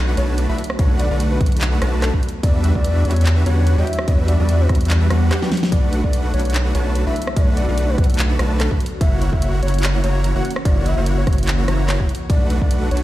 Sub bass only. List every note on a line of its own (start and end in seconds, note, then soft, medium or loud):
0.00 0.15 B1 loud
0.17 0.47 B1 loud
0.49 0.55 B1 loud
0.79 1.09 B1 loud
1.11 1.39 B1 loud
1.41 1.80 B1 loud
1.82 2.11 B1 loud
2.14 2.19 B1 loud
2.43 2.73 E2 loud
2.75 3.03 E2 loud
3.05 3.44 E2 loud
3.46 3.76 E2 medium
3.78 3.84 E2 loud
4.08 4.37 E2 medium
4.40 4.68 E2 loud
4.69 5.09 E2 loud
5.11 5.31 E2 loud
5.72 6.02 B1 medium
6.04 6.32 B1 loud
6.34 6.73 B1 loud
6.75 7.05 B1 medium
7.07 7.12 B1 loud
7.37 7.66 B1 loud
7.69 7.96 B1 loud
7.98 8.37 B1 medium
8.39 8.69 B1 loud
8.71 8.77 B1 medium
9.01 9.31 F#1 loud
9.33 9.61 F#1 loud
9.63 10.02 F#1 loud
10.04 10.33 F#1 loud
10.36 10.41 F#1 loud
10.65 10.95 F#1 loud
10.97 11.25 F#1 loud
11.27 11.66 F#1 loud
11.68 11.98 F#1 loud
12.00 12.06 F#1 medium
12.30 12.59 B1 loud
12.62 12.89 B1 loud
12.91 13.03 B1 loud